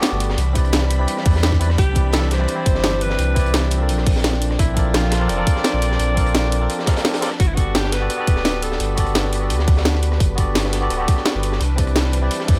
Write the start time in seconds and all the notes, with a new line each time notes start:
Already playing: A3 B3 D4 F#4 G4 A4 D5
0.02 snare, closed hi-hat
0.12 G1
0.20 closed hi-hat
0.30 snare
0.38 C2 E3 G3 D4 B5, closed hi-hat
0.53 C4 E4 G4 B4, kick, closed hi-hat
0.58 D5
0.65 cross-stick, closed hi-hat
0.73 snare, closed hi-hat
0.82 snare
0.90 closed hi-hat
0.98 C4 E4 G4 B4 D5
1.08 closed hi-hat
1.17 cross-stick, snare
1.24 E2 C4 E4 G4 B4 D5, kick, closed hi-hat, open hi-hat
1.35 snare
1.43 snare, closed hi-hat
1.52 kick, snare
1.59 C4 E4 G4 B4 D5, closed hi-hat
1.70 cross-stick, snare
1.78 C2 G4, kick, closed hi-hat
1.93 C4 E4 G4 B4, kick, closed hi-hat
1.98 D5
2.13 A4, snare, closed hi-hat
2.22 snare
2.31 C5, snare, closed hi-hat
2.39 C4 E4 G4 B4 D5
2.48 cross-stick, closed hi-hat
2.55 C4 E4 G4
2.60 D5
2.66 G1, kick, closed hi-hat
2.75 snare
2.84 snare, closed hi-hat
3.01 B4, closed hi-hat
3.10 snare
3.19 C2, closed hi-hat
3.34 C4 E4 G4 B4, kick, closed hi-hat
3.39 D5
3.45 cross-stick, closed hi-hat
3.54 snare, closed hi-hat
3.63 snare
3.71 closed hi-hat
3.78 C4 F4 A4 A#4
3.83 D5
3.89 A#1 F3 C4, closed hi-hat
3.98 cross-stick, snare
4.07 kick, closed hi-hat, open hi-hat
4.16 snare
4.24 snare, closed hi-hat
4.33 snare
4.42 closed hi-hat
4.51 cross-stick, snare
4.59 A#1 E4, kick, closed hi-hat
4.74 C4 F4 A4 A#4, kick, closed hi-hat
4.79 D5
4.94 F4, snare, closed hi-hat
5.04 snare
5.12 snare, closed hi-hat
5.20 C4 F4 A4 A#4 D5
5.29 F1 D5, cross-stick, closed hi-hat
5.36 C4 F4 A4 A#4
5.41 D5
5.47 kick, closed hi-hat
5.56 snare
5.64 snare, closed hi-hat
5.74 A#1
5.82 closed hi-hat
5.92 snare
5.99 A#1, closed hi-hat
6.14 C4 F4 A4 A#4, kick, closed hi-hat
6.19 D5
6.26 cross-stick, closed hi-hat
6.34 snare, closed hi-hat
6.44 snare
6.52 closed hi-hat
6.60 C4 F4 A4 A#4 D5
6.70 closed hi-hat
6.79 cross-stick, snare
6.86 C4 F4 A4 A#4 D5, kick, snare, closed hi-hat
6.97 snare, closed hi-hat
7.05 snare, closed hi-hat
7.14 cross-stick, snare, closed hi-hat
7.21 C4 F4 A4 A#4 D5, snare, closed hi-hat
7.31 cross-stick, snare
7.40 G1 F#4 B4, kick, closed hi-hat
7.47 E4
7.54 B3 F#4 G4, kick, closed hi-hat
7.58 A4 D5, closed hi-hat
7.75 G4, snare, closed hi-hat
7.84 snare
7.92 B4, snare, closed hi-hat
8.00 B3 F#4 G4 A4 D5
8.10 cross-stick, closed hi-hat
8.16 B3 F#4 G4 A4
8.21 D5
8.27 D1, kick, closed hi-hat
8.36 snare
8.45 snare, closed hi-hat
8.62 A4, closed hi-hat
8.72 snare
8.80 G1, closed hi-hat
8.95 B3 F#4 G4 A4, kick, closed hi-hat
9.00 D5
9.06 cross-stick, closed hi-hat
9.15 snare, closed hi-hat
9.24 snare
9.33 closed hi-hat
9.39 B3 F#4 G4 A4
9.44 D5
9.50 D2, closed hi-hat
9.59 cross-stick, snare
9.67 kick, closed hi-hat, open hi-hat
9.77 snare
9.85 snare, closed hi-hat
9.94 snare
10.02 closed hi-hat
10.12 cross-stick, snare
10.20 G1, kick, closed hi-hat
10.35 B3 F#4 G4 A4, kick, closed hi-hat
10.40 D5
10.55 snare, closed hi-hat
10.65 snare
10.73 snare, closed hi-hat
10.81 B3 F#4 G4 A4 D5
10.90 D1, cross-stick, closed hi-hat
10.97 B3 F#4 G4 A4
11.02 D5
11.08 kick, closed hi-hat
11.17 snare
11.25 snare, closed hi-hat
11.35 G1
11.43 closed hi-hat
11.52 snare
11.61 C2 E3 G3 D4, closed hi-hat
11.76 C4 E4 G4 B4, kick, closed hi-hat
11.81 D5
11.87 cross-stick, closed hi-hat
11.96 snare, closed hi-hat
12.04 snare
12.13 closed hi-hat
12.21 C4 E4 G4 B4 D5
12.31 closed hi-hat
12.40 cross-stick, snare
12.47 E2 C4 E4 G4 B4 D5, kick, closed hi-hat, open hi-hat